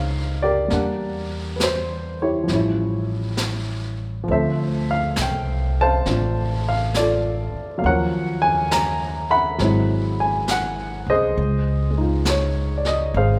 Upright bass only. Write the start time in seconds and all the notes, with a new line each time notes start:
Already playing: C#2
0.71 E2
2.49 A1
4.28 D2
5.18 C2
6.07 A1
7.54 muted upright bass stroke
7.84 D#2
9.60 G#1
11.06 C2
11.37 C#2
13.14 G#1